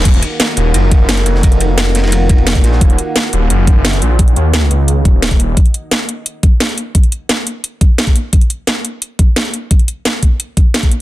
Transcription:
<<
  \new Staff \with { instrumentName = "Analog synth pad" } { \time 4/4 \key ees \minor \tempo 4 = 174 << { <ees' bes' ges''>1~ | <ees' bes' ges''>1~ | <ees' bes' ges''>1~ | <ees' bes' ges''>1~ |
<ees' bes' ges''>1~ | <ees' bes' ges''>1 | r1 | r1 | } \\ { f''1~ | f''1~ | f''1 | ees''1~ |
ees''1~ | ees''1 | r1 | r1 | } >> }
  \new Staff \with { instrumentName = "Detuned saw bass" } { \clef bass \time 4/4 \key ees \minor ees,,8 r4 ees,,8 ges,,4. f,,8~ | f,,2.~ f,,8 bes,,8 | ees,,8 r4 ees,,8 ges,,4. bes,,8~ | bes,,8 ees,4 des,4 ees,,4 ees,,8 |
r1 | r1 | r1 | r1 | }
  \new DrumStaff \with { instrumentName = "Drums" } \drummode { \time 4/4 <cymc hh bd cymr>16 hh16 <hh cymr>8 <hh cymr sn>8 <hh cymr>8 <hh cymr>8 <hh bd cymr>8 <hh cymr sn>16 <hh sn>16 <hh cymr>16 sn16 | <hh bd cymr>16 hh16 <hh cymr>8 <hh cymr sn>8 <hh cymr sn>16 <cymr sn>32 <cymr sn>32 <hh cymr>8 <hh bd cymr>16 cymr16 <hh cymr sn>16 <hh bd cymr>16 <hh cymr sn>16 sn16 | <hh bd>16 hh16 hh8 <hh sn>8 hh8 hh8 <hh bd>8 <hh sn>16 hh16 hh8 | <hh bd>16 hh16 hh8 <hh sn>8 hh8 hh8 <hh bd>8 <hh sn>16 <hh bd>16 hh8 |
<hh bd>16 hh16 hh8 <hh sn>8 hh8 hh8 <hh bd>8 <hh sn>16 hh16 hh8 | <hh bd>16 hh16 hh8 <hh sn>8 hh8 hh8 <hh bd>8 <hh sn>16 <hh bd>16 hh8 | <hh bd>16 hh16 hh8 <hh sn>8 hh8 hh8 <hh bd>8 <hh sn>16 hh16 hh8 | <hh bd>16 hh16 hh8 <hh sn>8 <hh bd>8 hh8 <hh bd>8 <hh sn>16 <hh bd>16 hh8 | }
>>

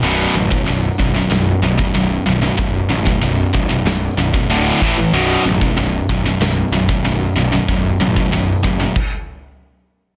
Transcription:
<<
  \new Staff \with { instrumentName = "Distorted electric guitar" } { \clef bass \time 4/4 \key b \minor \tempo 4 = 94 <b,, fis, b,>8 <b,, fis,>16 <b,, fis,>16 <b,, fis,>8 <b,, fis,>16 <b,, fis,>16 <b,, fis,>8 <b,, fis,>16 <b,, fis,>16 <b,, fis,>8 <b,, fis,>16 <b,, fis,>16 | <b,, fis,>8 <b,, fis,>16 <b,, fis,>16 <b,, fis,>8 <b,, fis,>16 <b,, fis,>16 <b,, fis,>8 <b,, fis,>16 <b,, fis,>16 <d, a, d>8 <a, e a>16 <a, e>16 | <b,, fis, b,>8 <b,, fis,>16 <b,, fis,>16 <b,, fis,>8 <b,, fis,>16 <b,, fis,>16 <b,, fis,>8 <b,, fis,>16 <b,, fis,>16 <b,, fis,>8 <b,, fis,>16 <b,, fis,>16 | <b,, fis,>8 <b,, fis,>16 <b,, fis,>16 <b,, fis,>8 <b,, fis,>16 <b,, fis,>16 r2 | }
  \new Staff \with { instrumentName = "Distorted electric guitar" } { \clef bass \time 4/4 \key b \minor <b,, fis, b,>8 <b,, fis,>16 <b,, fis,>16 <b,, fis,>8 <b,, fis,>16 <b,, fis,>16 <b,, fis,>8 <b,, fis,>16 <b,, fis,>16 <b,, fis,>8 <b,, fis,>16 <b,, fis,>16 | <b,, fis,>8 <b,, fis,>16 <b,, fis,>16 <b,, fis,>8 <b,, fis,>16 <b,, fis,>16 <b,, fis,>8 <b,, fis,>16 <b,, fis,>16 <d, a, d>8 <a, e a>16 <a, e>16 | <b,, fis, b,>8 <b,, fis,>16 <b,, fis,>16 <b,, fis,>8 <b,, fis,>16 <b,, fis,>16 <b,, fis,>8 <b,, fis,>16 <b,, fis,>16 <b,, fis,>8 <b,, fis,>16 <b,, fis,>16 | <b,, fis,>8 <b,, fis,>16 <b,, fis,>16 <b,, fis,>8 <b,, fis,>16 <b,, fis,>16 r2 | }
  \new Staff \with { instrumentName = "Picked electric bass" } { \clef bass \time 4/4 \key b \minor b,,,8 a,,8 b,,,8 b,,,8 b,,,8 b,,,8 b,,,8 b,,,8 | b,,,8 a,,8 b,,,8 b,,,8 b,,,8 b,,,8 d,,8 a,,8 | b,,,8 a,,8 b,,,8 b,,,8 b,,,8 b,,,8 b,,,8 b,,,8 | b,,,8 a,,8 b,,,8 fis,,8 r2 | }
  \new DrumStaff \with { instrumentName = "Drums" } \drummode { \time 4/4 hho8. bd16 hho8 bd8 <hho sn>8. bd16 hho4 | <hho bd>8. bd16 hho8 bd8 <hho sn>8. bd16 hho8 bd8 | hho8. bd16 hho8 bd8 <hho sn>8. bd16 hho4 | <hho bd>8. bd16 hho8 bd8 <cymc bd>4 r4 | }
>>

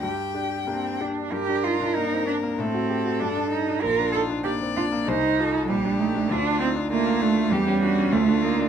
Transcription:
<<
  \new Staff \with { instrumentName = "Violin" } { \time 2/4 \key g \minor \tempo 4 = 96 g''4. r8 | bes'2 | a'2 | f'4 d''4 |
c''8 a'8 g'4 | f'4 f'4 | g'8 fis'8 f'4 | }
  \new Staff \with { instrumentName = "Cello" } { \time 2/4 \key g \minor g'4 c'8 d'8 | g'8 f'8 ees'8 d'8 | c'4 d'8 ees'8 | bes'8 a'8 g'8 f'8 |
ees'4 g8 a8 | d'8 c'8 bes8 a8 | g4 a8 bes8 | }
  \new Staff \with { instrumentName = "Grand piano" } { \time 2/4 \key g \minor g,8 <d' g'>8 <bes d' g'>8 <d' g'>8 | g,16 d'16 ees'16 d'16 bes16 c'16 d'16 bes16 | a,16 fis'16 g'16 fis'16 g,16 d'16 ees'16 d'16 | bes,,16 d'16 ees'16 d'16 bes16 c'16 d'16 bes16 |
c,16 ees'16 f'16 ees'16 bes,,16 d'16 ees'16 d'16 | d,16 d'16 ees'16 d'16 a16 bes16 d'16 a16 | e,16 cis'16 d'16 cis'16 d,16 d'16 ees'16 d'16 | }
>>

